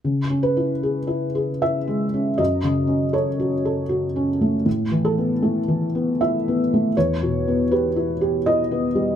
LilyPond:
\new Staff \with { instrumentName = "Felt piano" } { \time 3/4 \key cis \minor \tempo 4 = 79 << { r8 b'4. e''4 | dis''4 cis''2 | r8 a'4. e''4 | cis''4 b'4 dis''4 | } \\ { \tuplet 3/2 { cis8 cis'8 e'8 gis'8 e'8 gis'8 e'8 gis8 cis'8 } | \tuplet 3/2 { fis,8 cis8 cis'8 a'8 fis'8 a'8 fis'8 cis'8 a8 } | \tuplet 3/2 { a,8 e8 b8 a8 e8 b8 e'8 b8 a8 } | \tuplet 3/2 { e,8 b,8 b8 g'8 e'8 g'8 e'8 b8 g8 } | } >> }